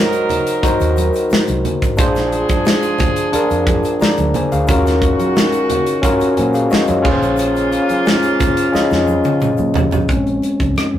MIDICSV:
0, 0, Header, 1, 6, 480
1, 0, Start_track
1, 0, Key_signature, -5, "minor"
1, 0, Tempo, 674916
1, 1413, Time_signature, 4, 2, 24, 8
1, 7814, End_track
2, 0, Start_track
2, 0, Title_t, "Tine electric piano"
2, 0, Program_c, 0, 4
2, 0, Control_c, 0, 64, 127
2, 0, Note_on_c, 0, 63, 83
2, 0, Note_on_c, 0, 66, 77
2, 0, Note_on_c, 0, 70, 83
2, 0, Note_on_c, 0, 72, 96
2, 368, Note_off_c, 0, 63, 0
2, 372, Note_off_c, 0, 66, 0
2, 375, Note_off_c, 0, 70, 0
2, 379, Note_off_c, 0, 72, 0
2, 444, Note_on_c, 0, 63, 77
2, 452, Note_on_c, 0, 66, 74
2, 460, Note_on_c, 0, 70, 75
2, 467, Note_on_c, 0, 72, 89
2, 1328, Note_off_c, 0, 63, 0
2, 1332, Note_off_c, 0, 66, 0
2, 1336, Note_off_c, 0, 70, 0
2, 1340, Note_off_c, 0, 72, 0
2, 1402, Note_on_c, 0, 62, 88
2, 1407, Note_on_c, 0, 65, 78
2, 1415, Note_on_c, 0, 68, 82
2, 1421, Control_c, 0, 64, 0
2, 1423, Note_on_c, 0, 72, 102
2, 1526, Control_c, 0, 64, 127
2, 2287, Note_off_c, 0, 62, 0
2, 2290, Note_off_c, 0, 65, 0
2, 2294, Note_off_c, 0, 68, 0
2, 2298, Note_off_c, 0, 72, 0
2, 2362, Note_on_c, 0, 62, 78
2, 2369, Note_on_c, 0, 65, 79
2, 2378, Note_on_c, 0, 68, 77
2, 2385, Note_on_c, 0, 70, 93
2, 2854, Note_on_c, 0, 82, 70
2, 2856, Note_off_c, 0, 68, 0
2, 2856, Note_on_c, 0, 74, 61
2, 2859, Note_off_c, 0, 70, 0
2, 3081, Note_off_c, 0, 82, 0
2, 3083, Note_off_c, 0, 74, 0
2, 3099, Note_on_c, 0, 80, 73
2, 3102, Note_on_c, 0, 72, 60
2, 3210, Note_off_c, 0, 80, 0
2, 3212, Note_off_c, 0, 72, 0
2, 3215, Note_on_c, 0, 77, 69
2, 3219, Note_on_c, 0, 68, 59
2, 3248, Note_off_c, 0, 62, 0
2, 3251, Note_off_c, 0, 65, 0
2, 3324, Note_on_c, 0, 61, 88
2, 3330, Note_on_c, 0, 65, 79
2, 3339, Note_on_c, 0, 66, 81
2, 3344, Control_c, 0, 64, 0
2, 3347, Note_on_c, 0, 70, 95
2, 3442, Note_off_c, 0, 77, 0
2, 3444, Note_off_c, 0, 68, 0
2, 3468, Control_c, 0, 64, 127
2, 4208, Note_off_c, 0, 61, 0
2, 4211, Note_off_c, 0, 65, 0
2, 4216, Note_off_c, 0, 66, 0
2, 4220, Note_off_c, 0, 70, 0
2, 4280, Note_on_c, 0, 61, 83
2, 4287, Note_on_c, 0, 65, 74
2, 4296, Note_on_c, 0, 66, 80
2, 4305, Note_on_c, 0, 70, 95
2, 4530, Note_off_c, 0, 65, 0
2, 4535, Note_off_c, 0, 66, 0
2, 4535, Note_on_c, 0, 80, 65
2, 4537, Note_on_c, 0, 72, 53
2, 4539, Note_off_c, 0, 70, 0
2, 4648, Note_off_c, 0, 80, 0
2, 4649, Note_off_c, 0, 72, 0
2, 4652, Note_on_c, 0, 77, 71
2, 4655, Note_on_c, 0, 68, 61
2, 4767, Note_off_c, 0, 77, 0
2, 4769, Note_off_c, 0, 68, 0
2, 4771, Note_on_c, 0, 75, 80
2, 4774, Note_on_c, 0, 66, 67
2, 4886, Note_off_c, 0, 75, 0
2, 4888, Note_off_c, 0, 66, 0
2, 4889, Note_on_c, 0, 73, 66
2, 4891, Note_on_c, 0, 65, 56
2, 4987, Note_off_c, 0, 61, 0
2, 4995, Note_off_c, 0, 65, 0
2, 4996, Note_on_c, 0, 61, 92
2, 5004, Note_on_c, 0, 65, 92
2, 5010, Note_on_c, 0, 68, 87
2, 5018, Note_on_c, 0, 71, 78
2, 5022, Control_c, 0, 64, 0
2, 5062, Note_off_c, 0, 71, 0
2, 5063, Note_on_c, 0, 72, 96
2, 5120, Note_off_c, 0, 73, 0
2, 5166, Control_c, 0, 64, 127
2, 5885, Note_off_c, 0, 61, 0
2, 5889, Note_off_c, 0, 65, 0
2, 5893, Note_off_c, 0, 68, 0
2, 5919, Note_off_c, 0, 72, 0
2, 6202, Note_on_c, 0, 61, 76
2, 6210, Note_on_c, 0, 65, 75
2, 6218, Note_on_c, 0, 68, 73
2, 6224, Note_on_c, 0, 75, 90
2, 7089, Note_off_c, 0, 61, 0
2, 7093, Note_off_c, 0, 65, 0
2, 7097, Note_off_c, 0, 68, 0
2, 7100, Note_off_c, 0, 75, 0
2, 7172, Note_on_c, 0, 56, 52
2, 7176, Note_on_c, 0, 60, 51
2, 7179, Note_on_c, 0, 61, 51
2, 7184, Control_c, 0, 64, 0
2, 7332, Control_c, 0, 64, 127
2, 7493, Note_off_c, 0, 56, 0
2, 7495, Note_off_c, 0, 60, 0
2, 7497, Note_off_c, 0, 61, 0
2, 7814, End_track
3, 0, Start_track
3, 0, Title_t, "Horn section"
3, 0, Program_c, 1, 61
3, 0, Note_on_c, 1, 54, 76
3, 0, Note_on_c, 1, 63, 77
3, 0, Note_on_c, 1, 70, 83
3, 1143, Note_off_c, 1, 54, 0
3, 1143, Note_off_c, 1, 63, 0
3, 1143, Note_off_c, 1, 70, 0
3, 1415, Note_on_c, 1, 53, 76
3, 1415, Note_on_c, 1, 68, 89
3, 1416, Note_on_c, 1, 62, 79
3, 3065, Note_off_c, 1, 68, 0
3, 3066, Note_off_c, 1, 53, 0
3, 3066, Note_off_c, 1, 62, 0
3, 3334, Note_on_c, 1, 51, 86
3, 3335, Note_on_c, 1, 61, 81
3, 3336, Note_on_c, 1, 66, 87
3, 4746, Note_off_c, 1, 51, 0
3, 4746, Note_off_c, 1, 61, 0
3, 4747, Note_off_c, 1, 66, 0
3, 5010, Note_on_c, 1, 49, 72
3, 5010, Note_on_c, 1, 58, 81
3, 5011, Note_on_c, 1, 65, 93
3, 6905, Note_off_c, 1, 49, 0
3, 6905, Note_off_c, 1, 58, 0
3, 6906, Note_off_c, 1, 65, 0
3, 7814, End_track
4, 0, Start_track
4, 0, Title_t, "Fingered electric bass"
4, 0, Program_c, 2, 33
4, 571, Note_on_c, 2, 39, 95
4, 772, Note_off_c, 2, 39, 0
4, 1053, Note_on_c, 2, 36, 90
4, 1153, Note_off_c, 2, 36, 0
4, 1296, Note_on_c, 2, 32, 84
4, 1414, Note_off_c, 2, 32, 0
4, 1414, Note_on_c, 2, 34, 107
4, 1714, Note_off_c, 2, 34, 0
4, 2495, Note_on_c, 2, 41, 91
4, 2695, Note_off_c, 2, 41, 0
4, 2976, Note_on_c, 2, 38, 92
4, 3075, Note_off_c, 2, 38, 0
4, 3217, Note_on_c, 2, 38, 82
4, 3316, Note_off_c, 2, 38, 0
4, 4540, Note_on_c, 2, 46, 94
4, 4738, Note_off_c, 2, 46, 0
4, 4898, Note_on_c, 2, 42, 96
4, 4997, Note_off_c, 2, 42, 0
4, 5015, Note_on_c, 2, 34, 98
4, 5517, Note_off_c, 2, 34, 0
4, 6339, Note_on_c, 2, 41, 82
4, 6538, Note_off_c, 2, 41, 0
4, 6818, Note_on_c, 2, 46, 91
4, 6918, Note_off_c, 2, 46, 0
4, 7062, Note_on_c, 2, 32, 70
4, 7160, Note_off_c, 2, 32, 0
4, 7175, Note_on_c, 2, 34, 90
4, 7377, Note_off_c, 2, 34, 0
4, 7540, Note_on_c, 2, 37, 71
4, 7639, Note_off_c, 2, 37, 0
4, 7781, Note_on_c, 2, 41, 73
4, 7814, Note_off_c, 2, 41, 0
4, 7814, End_track
5, 0, Start_track
5, 0, Title_t, "Muted fingered electric bass strokes"
5, 449, Note_on_c, 9, 29, 49
5, 520, Note_off_c, 9, 29, 0
5, 934, Note_on_c, 9, 29, 48
5, 1005, Note_off_c, 9, 29, 0
5, 2372, Note_on_c, 9, 29, 53
5, 2443, Note_off_c, 9, 29, 0
5, 2855, Note_on_c, 9, 29, 45
5, 2926, Note_off_c, 9, 29, 0
5, 4419, Note_on_c, 9, 29, 49
5, 4491, Note_off_c, 9, 29, 0
5, 4782, Note_on_c, 9, 29, 51
5, 4853, Note_off_c, 9, 29, 0
5, 6220, Note_on_c, 9, 29, 50
5, 6291, Note_off_c, 9, 29, 0
5, 6699, Note_on_c, 9, 29, 43
5, 6771, Note_off_c, 9, 29, 0
5, 7656, Note_on_c, 9, 29, 49
5, 7727, Note_off_c, 9, 29, 0
5, 7814, End_track
6, 0, Start_track
6, 0, Title_t, "Drums"
6, 89, Note_on_c, 9, 82, 48
6, 90, Note_on_c, 9, 42, 53
6, 160, Note_off_c, 9, 82, 0
6, 161, Note_off_c, 9, 42, 0
6, 209, Note_on_c, 9, 62, 30
6, 209, Note_on_c, 9, 64, 70
6, 215, Note_on_c, 9, 42, 81
6, 280, Note_off_c, 9, 62, 0
6, 280, Note_off_c, 9, 64, 0
6, 286, Note_off_c, 9, 42, 0
6, 332, Note_on_c, 9, 42, 65
6, 335, Note_on_c, 9, 82, 44
6, 403, Note_off_c, 9, 42, 0
6, 406, Note_off_c, 9, 82, 0
6, 449, Note_on_c, 9, 36, 93
6, 452, Note_on_c, 9, 42, 93
6, 453, Note_on_c, 9, 62, 34
6, 459, Note_on_c, 9, 82, 63
6, 520, Note_off_c, 9, 36, 0
6, 523, Note_off_c, 9, 42, 0
6, 524, Note_off_c, 9, 62, 0
6, 531, Note_off_c, 9, 82, 0
6, 570, Note_on_c, 9, 82, 53
6, 579, Note_on_c, 9, 42, 57
6, 641, Note_off_c, 9, 82, 0
6, 650, Note_off_c, 9, 42, 0
6, 686, Note_on_c, 9, 82, 53
6, 692, Note_on_c, 9, 63, 63
6, 696, Note_on_c, 9, 42, 69
6, 757, Note_off_c, 9, 82, 0
6, 763, Note_off_c, 9, 63, 0
6, 767, Note_off_c, 9, 42, 0
6, 805, Note_on_c, 9, 82, 46
6, 822, Note_on_c, 9, 42, 56
6, 877, Note_off_c, 9, 82, 0
6, 893, Note_off_c, 9, 42, 0
6, 926, Note_on_c, 9, 82, 70
6, 927, Note_on_c, 9, 62, 30
6, 945, Note_on_c, 9, 38, 109
6, 997, Note_off_c, 9, 82, 0
6, 998, Note_off_c, 9, 62, 0
6, 1016, Note_off_c, 9, 38, 0
6, 1049, Note_on_c, 9, 82, 42
6, 1052, Note_on_c, 9, 42, 56
6, 1057, Note_on_c, 9, 63, 65
6, 1120, Note_off_c, 9, 82, 0
6, 1123, Note_off_c, 9, 42, 0
6, 1128, Note_off_c, 9, 63, 0
6, 1173, Note_on_c, 9, 42, 65
6, 1173, Note_on_c, 9, 64, 73
6, 1244, Note_off_c, 9, 42, 0
6, 1244, Note_off_c, 9, 64, 0
6, 1295, Note_on_c, 9, 36, 83
6, 1295, Note_on_c, 9, 42, 45
6, 1297, Note_on_c, 9, 82, 54
6, 1366, Note_off_c, 9, 42, 0
6, 1367, Note_off_c, 9, 36, 0
6, 1368, Note_off_c, 9, 82, 0
6, 1401, Note_on_c, 9, 82, 77
6, 1411, Note_on_c, 9, 42, 94
6, 1412, Note_on_c, 9, 36, 115
6, 1473, Note_off_c, 9, 82, 0
6, 1482, Note_off_c, 9, 42, 0
6, 1484, Note_off_c, 9, 36, 0
6, 1531, Note_on_c, 9, 82, 45
6, 1536, Note_on_c, 9, 38, 33
6, 1537, Note_on_c, 9, 42, 49
6, 1602, Note_off_c, 9, 82, 0
6, 1607, Note_off_c, 9, 38, 0
6, 1608, Note_off_c, 9, 42, 0
6, 1651, Note_on_c, 9, 62, 36
6, 1652, Note_on_c, 9, 42, 63
6, 1722, Note_off_c, 9, 62, 0
6, 1724, Note_off_c, 9, 42, 0
6, 1770, Note_on_c, 9, 42, 47
6, 1771, Note_on_c, 9, 63, 68
6, 1773, Note_on_c, 9, 82, 49
6, 1774, Note_on_c, 9, 36, 84
6, 1842, Note_off_c, 9, 42, 0
6, 1842, Note_off_c, 9, 63, 0
6, 1844, Note_off_c, 9, 82, 0
6, 1846, Note_off_c, 9, 36, 0
6, 1886, Note_on_c, 9, 62, 40
6, 1889, Note_on_c, 9, 82, 71
6, 1897, Note_on_c, 9, 38, 109
6, 1957, Note_off_c, 9, 62, 0
6, 1960, Note_off_c, 9, 82, 0
6, 1968, Note_off_c, 9, 38, 0
6, 2008, Note_on_c, 9, 82, 53
6, 2010, Note_on_c, 9, 42, 52
6, 2079, Note_off_c, 9, 82, 0
6, 2081, Note_off_c, 9, 42, 0
6, 2123, Note_on_c, 9, 62, 33
6, 2123, Note_on_c, 9, 64, 70
6, 2130, Note_on_c, 9, 42, 81
6, 2135, Note_on_c, 9, 36, 96
6, 2194, Note_off_c, 9, 62, 0
6, 2194, Note_off_c, 9, 64, 0
6, 2201, Note_off_c, 9, 42, 0
6, 2206, Note_off_c, 9, 36, 0
6, 2249, Note_on_c, 9, 42, 62
6, 2252, Note_on_c, 9, 82, 46
6, 2320, Note_off_c, 9, 42, 0
6, 2323, Note_off_c, 9, 82, 0
6, 2366, Note_on_c, 9, 62, 34
6, 2369, Note_on_c, 9, 42, 102
6, 2376, Note_on_c, 9, 82, 68
6, 2438, Note_off_c, 9, 62, 0
6, 2440, Note_off_c, 9, 42, 0
6, 2447, Note_off_c, 9, 82, 0
6, 2490, Note_on_c, 9, 82, 47
6, 2497, Note_on_c, 9, 42, 55
6, 2561, Note_off_c, 9, 82, 0
6, 2568, Note_off_c, 9, 42, 0
6, 2606, Note_on_c, 9, 63, 56
6, 2608, Note_on_c, 9, 36, 96
6, 2608, Note_on_c, 9, 42, 66
6, 2609, Note_on_c, 9, 82, 47
6, 2677, Note_off_c, 9, 63, 0
6, 2679, Note_off_c, 9, 36, 0
6, 2679, Note_off_c, 9, 42, 0
6, 2680, Note_off_c, 9, 82, 0
6, 2726, Note_on_c, 9, 82, 46
6, 2737, Note_on_c, 9, 42, 56
6, 2797, Note_off_c, 9, 82, 0
6, 2809, Note_off_c, 9, 42, 0
6, 2842, Note_on_c, 9, 62, 34
6, 2851, Note_on_c, 9, 82, 75
6, 2861, Note_on_c, 9, 38, 101
6, 2913, Note_off_c, 9, 62, 0
6, 2922, Note_off_c, 9, 82, 0
6, 2932, Note_off_c, 9, 38, 0
6, 2969, Note_on_c, 9, 82, 44
6, 2971, Note_on_c, 9, 42, 54
6, 2976, Note_on_c, 9, 63, 78
6, 3040, Note_off_c, 9, 82, 0
6, 3042, Note_off_c, 9, 42, 0
6, 3047, Note_off_c, 9, 63, 0
6, 3088, Note_on_c, 9, 64, 83
6, 3093, Note_on_c, 9, 42, 62
6, 3159, Note_off_c, 9, 64, 0
6, 3164, Note_off_c, 9, 42, 0
6, 3215, Note_on_c, 9, 42, 49
6, 3216, Note_on_c, 9, 82, 59
6, 3286, Note_off_c, 9, 42, 0
6, 3287, Note_off_c, 9, 82, 0
6, 3324, Note_on_c, 9, 82, 80
6, 3331, Note_on_c, 9, 62, 35
6, 3333, Note_on_c, 9, 36, 104
6, 3334, Note_on_c, 9, 42, 83
6, 3395, Note_off_c, 9, 82, 0
6, 3402, Note_off_c, 9, 62, 0
6, 3404, Note_off_c, 9, 36, 0
6, 3406, Note_off_c, 9, 42, 0
6, 3458, Note_on_c, 9, 82, 43
6, 3462, Note_on_c, 9, 38, 34
6, 3464, Note_on_c, 9, 42, 50
6, 3529, Note_off_c, 9, 82, 0
6, 3534, Note_off_c, 9, 38, 0
6, 3535, Note_off_c, 9, 42, 0
6, 3568, Note_on_c, 9, 36, 89
6, 3572, Note_on_c, 9, 42, 68
6, 3576, Note_on_c, 9, 62, 36
6, 3639, Note_off_c, 9, 36, 0
6, 3643, Note_off_c, 9, 42, 0
6, 3647, Note_off_c, 9, 62, 0
6, 3695, Note_on_c, 9, 42, 51
6, 3696, Note_on_c, 9, 82, 48
6, 3697, Note_on_c, 9, 63, 65
6, 3766, Note_off_c, 9, 42, 0
6, 3767, Note_off_c, 9, 82, 0
6, 3769, Note_off_c, 9, 63, 0
6, 3816, Note_on_c, 9, 82, 68
6, 3817, Note_on_c, 9, 38, 107
6, 3817, Note_on_c, 9, 62, 35
6, 3887, Note_off_c, 9, 82, 0
6, 3888, Note_off_c, 9, 38, 0
6, 3888, Note_off_c, 9, 62, 0
6, 3928, Note_on_c, 9, 42, 55
6, 3934, Note_on_c, 9, 82, 53
6, 3999, Note_off_c, 9, 42, 0
6, 4005, Note_off_c, 9, 82, 0
6, 4051, Note_on_c, 9, 42, 81
6, 4053, Note_on_c, 9, 62, 34
6, 4053, Note_on_c, 9, 64, 76
6, 4122, Note_off_c, 9, 42, 0
6, 4124, Note_off_c, 9, 62, 0
6, 4124, Note_off_c, 9, 64, 0
6, 4170, Note_on_c, 9, 42, 64
6, 4175, Note_on_c, 9, 82, 41
6, 4242, Note_off_c, 9, 42, 0
6, 4247, Note_off_c, 9, 82, 0
6, 4288, Note_on_c, 9, 36, 95
6, 4291, Note_on_c, 9, 42, 90
6, 4294, Note_on_c, 9, 62, 35
6, 4297, Note_on_c, 9, 82, 60
6, 4360, Note_off_c, 9, 36, 0
6, 4362, Note_off_c, 9, 42, 0
6, 4365, Note_off_c, 9, 62, 0
6, 4368, Note_off_c, 9, 82, 0
6, 4411, Note_on_c, 9, 82, 49
6, 4419, Note_on_c, 9, 42, 58
6, 4482, Note_off_c, 9, 82, 0
6, 4490, Note_off_c, 9, 42, 0
6, 4529, Note_on_c, 9, 82, 47
6, 4531, Note_on_c, 9, 42, 74
6, 4538, Note_on_c, 9, 63, 59
6, 4600, Note_off_c, 9, 82, 0
6, 4602, Note_off_c, 9, 42, 0
6, 4609, Note_off_c, 9, 63, 0
6, 4647, Note_on_c, 9, 82, 45
6, 4659, Note_on_c, 9, 42, 57
6, 4718, Note_off_c, 9, 82, 0
6, 4730, Note_off_c, 9, 42, 0
6, 4768, Note_on_c, 9, 82, 70
6, 4771, Note_on_c, 9, 62, 33
6, 4785, Note_on_c, 9, 38, 116
6, 4840, Note_off_c, 9, 82, 0
6, 4843, Note_off_c, 9, 62, 0
6, 4856, Note_off_c, 9, 38, 0
6, 4887, Note_on_c, 9, 82, 46
6, 4892, Note_on_c, 9, 42, 57
6, 4902, Note_on_c, 9, 63, 69
6, 4958, Note_off_c, 9, 82, 0
6, 4963, Note_off_c, 9, 42, 0
6, 4973, Note_off_c, 9, 63, 0
6, 5011, Note_on_c, 9, 49, 65
6, 5013, Note_on_c, 9, 36, 99
6, 5019, Note_on_c, 9, 64, 76
6, 5082, Note_off_c, 9, 49, 0
6, 5084, Note_off_c, 9, 36, 0
6, 5090, Note_off_c, 9, 64, 0
6, 5137, Note_on_c, 9, 82, 54
6, 5138, Note_on_c, 9, 42, 43
6, 5208, Note_off_c, 9, 82, 0
6, 5209, Note_off_c, 9, 42, 0
6, 5240, Note_on_c, 9, 82, 76
6, 5257, Note_on_c, 9, 42, 84
6, 5311, Note_off_c, 9, 82, 0
6, 5328, Note_off_c, 9, 42, 0
6, 5373, Note_on_c, 9, 82, 41
6, 5381, Note_on_c, 9, 42, 46
6, 5444, Note_off_c, 9, 82, 0
6, 5452, Note_off_c, 9, 42, 0
6, 5490, Note_on_c, 9, 82, 47
6, 5494, Note_on_c, 9, 42, 71
6, 5562, Note_off_c, 9, 82, 0
6, 5565, Note_off_c, 9, 42, 0
6, 5613, Note_on_c, 9, 42, 51
6, 5614, Note_on_c, 9, 82, 51
6, 5618, Note_on_c, 9, 63, 58
6, 5684, Note_off_c, 9, 42, 0
6, 5685, Note_off_c, 9, 82, 0
6, 5690, Note_off_c, 9, 63, 0
6, 5731, Note_on_c, 9, 82, 66
6, 5737, Note_on_c, 9, 62, 37
6, 5741, Note_on_c, 9, 38, 114
6, 5802, Note_off_c, 9, 82, 0
6, 5808, Note_off_c, 9, 62, 0
6, 5812, Note_off_c, 9, 38, 0
6, 5850, Note_on_c, 9, 42, 54
6, 5853, Note_on_c, 9, 82, 55
6, 5921, Note_off_c, 9, 42, 0
6, 5924, Note_off_c, 9, 82, 0
6, 5972, Note_on_c, 9, 62, 32
6, 5972, Note_on_c, 9, 64, 74
6, 5975, Note_on_c, 9, 82, 59
6, 5977, Note_on_c, 9, 36, 85
6, 5977, Note_on_c, 9, 42, 78
6, 6043, Note_off_c, 9, 62, 0
6, 6043, Note_off_c, 9, 64, 0
6, 6046, Note_off_c, 9, 82, 0
6, 6048, Note_off_c, 9, 36, 0
6, 6048, Note_off_c, 9, 42, 0
6, 6095, Note_on_c, 9, 42, 68
6, 6097, Note_on_c, 9, 82, 40
6, 6166, Note_off_c, 9, 42, 0
6, 6168, Note_off_c, 9, 82, 0
6, 6212, Note_on_c, 9, 62, 35
6, 6223, Note_on_c, 9, 38, 61
6, 6223, Note_on_c, 9, 82, 64
6, 6283, Note_off_c, 9, 62, 0
6, 6294, Note_off_c, 9, 82, 0
6, 6295, Note_off_c, 9, 38, 0
6, 6333, Note_on_c, 9, 82, 54
6, 6344, Note_on_c, 9, 38, 57
6, 6404, Note_off_c, 9, 82, 0
6, 6415, Note_off_c, 9, 38, 0
6, 6451, Note_on_c, 9, 63, 62
6, 6452, Note_on_c, 9, 82, 54
6, 6522, Note_off_c, 9, 63, 0
6, 6523, Note_off_c, 9, 82, 0
6, 6572, Note_on_c, 9, 82, 47
6, 6579, Note_on_c, 9, 48, 70
6, 6643, Note_off_c, 9, 82, 0
6, 6650, Note_off_c, 9, 48, 0
6, 6686, Note_on_c, 9, 62, 33
6, 6692, Note_on_c, 9, 82, 75
6, 6697, Note_on_c, 9, 47, 79
6, 6757, Note_off_c, 9, 62, 0
6, 6764, Note_off_c, 9, 82, 0
6, 6768, Note_off_c, 9, 47, 0
6, 6808, Note_on_c, 9, 82, 45
6, 6816, Note_on_c, 9, 63, 75
6, 6880, Note_off_c, 9, 82, 0
6, 6887, Note_off_c, 9, 63, 0
6, 6927, Note_on_c, 9, 62, 32
6, 6927, Note_on_c, 9, 64, 77
6, 6937, Note_on_c, 9, 43, 95
6, 6941, Note_on_c, 9, 82, 54
6, 6998, Note_off_c, 9, 62, 0
6, 6998, Note_off_c, 9, 64, 0
6, 7009, Note_off_c, 9, 43, 0
6, 7012, Note_off_c, 9, 82, 0
6, 7049, Note_on_c, 9, 64, 65
6, 7057, Note_on_c, 9, 82, 58
6, 7058, Note_on_c, 9, 43, 83
6, 7120, Note_off_c, 9, 64, 0
6, 7128, Note_off_c, 9, 82, 0
6, 7129, Note_off_c, 9, 43, 0
6, 7171, Note_on_c, 9, 62, 34
6, 7175, Note_on_c, 9, 36, 98
6, 7179, Note_on_c, 9, 42, 78
6, 7242, Note_off_c, 9, 62, 0
6, 7246, Note_off_c, 9, 36, 0
6, 7251, Note_off_c, 9, 42, 0
6, 7302, Note_on_c, 9, 42, 30
6, 7373, Note_off_c, 9, 42, 0
6, 7412, Note_on_c, 9, 62, 34
6, 7420, Note_on_c, 9, 42, 58
6, 7483, Note_off_c, 9, 62, 0
6, 7491, Note_off_c, 9, 42, 0
6, 7536, Note_on_c, 9, 63, 60
6, 7538, Note_on_c, 9, 36, 71
6, 7539, Note_on_c, 9, 42, 44
6, 7607, Note_off_c, 9, 63, 0
6, 7609, Note_off_c, 9, 36, 0
6, 7611, Note_off_c, 9, 42, 0
6, 7653, Note_on_c, 9, 62, 35
6, 7664, Note_on_c, 9, 42, 80
6, 7665, Note_on_c, 9, 37, 102
6, 7724, Note_off_c, 9, 62, 0
6, 7735, Note_off_c, 9, 42, 0
6, 7736, Note_off_c, 9, 37, 0
6, 7814, End_track
0, 0, End_of_file